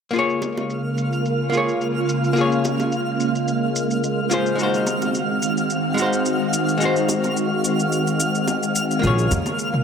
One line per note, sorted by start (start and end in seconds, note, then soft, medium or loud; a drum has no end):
0.11 4.55 C#3 medium
0.11 9.84 G#3 medium
0.11 1.48 A#3 medium
0.11 1.50 F4 medium
0.11 9.84 F5 medium
0.11 shaker soft
0.15 4.55 A#3 medium
0.15 4.55 F4 medium
0.15 1.51 G#4 medium
0.15 1.52 C#5 medium
0.15 9.84 F6 medium
0.30 shaker soft
0.42 high bongo medium
0.42 shaker medium
0.57 high bongo medium
0.57 shaker soft
0.70 shaker soft
0.98 shaker medium
1.13 shaker soft
1.25 shaker soft
1.50 2.32 A#3 medium
1.50 2.33 F4 medium
1.50 shaker medium
1.55 2.34 G#4 medium
1.55 2.36 C#5 medium
1.68 shaker soft
1.81 shaker soft
2.09 shaker medium
2.24 shaker soft
2.33 4.26 A#3 medium
2.33 4.28 F4 medium
2.33 shaker soft
2.38 4.29 G#4 medium
2.38 4.30 C#5 medium
2.52 shaker soft
2.65 high bongo medium
2.65 shaker medium
2.80 high bongo medium
2.80 shaker soft
2.92 shaker soft
3.20 shaker medium
3.35 shaker soft
3.48 shaker soft
3.76 shaker medium
3.91 shaker soft
4.03 shaker soft
4.30 4.55 A#3 medium
4.30 4.56 F4 medium
4.30 4.57 G#4 medium
4.30 4.57 C5 medium
4.30 shaker medium
4.46 shaker soft
4.55 9.00 D#3 medium
4.55 5.93 G#3 medium
4.55 8.99 C4 medium
4.55 5.94 D#4 medium
4.55 8.99 F#4 medium
4.55 shaker soft
4.61 5.96 F#4 medium
4.61 5.97 C5 medium
4.74 shaker soft
4.87 high bongo medium
4.87 shaker medium
5.02 high bongo medium
5.02 shaker soft
5.15 shaker soft
5.42 shaker medium
5.57 shaker soft
5.70 shaker soft
5.94 6.76 G#3 medium
5.94 6.78 D#4 medium
5.94 shaker medium
5.99 6.79 F#4 medium
5.99 6.80 C5 medium
6.13 shaker soft
6.25 shaker soft
6.53 shaker medium
6.68 shaker soft
6.78 8.71 G#3 medium
6.78 8.72 D#4 medium
6.78 shaker soft
6.83 8.73 F#4 medium
6.83 8.75 C5 medium
6.96 shaker soft
7.09 high bongo medium
7.09 shaker medium
7.24 high bongo medium
7.24 shaker soft
7.37 shaker soft
7.64 shaker medium
7.80 shaker soft
7.92 shaker soft
8.07 shaker soft
8.20 shaker medium
8.35 shaker soft
8.48 high bongo medium
8.48 shaker soft
8.63 shaker soft
8.75 shaker medium
8.91 shaker soft
8.99 9.84 A#3 medium
8.99 9.84 F4 medium
9.03 9.25 A#1 medium
9.03 9.84 C#3 medium
9.03 9.84 A#3 medium
9.03 9.84 F4 medium
9.03 9.84 G#4 medium
9.03 9.84 C#5 medium
9.03 mid tom medium
9.03 shaker soft
9.19 shaker soft
9.31 9.42 F2 medium
9.31 high bongo medium
9.31 shaker medium
9.46 high bongo medium
9.46 shaker soft
9.59 shaker soft
9.74 mid tom medium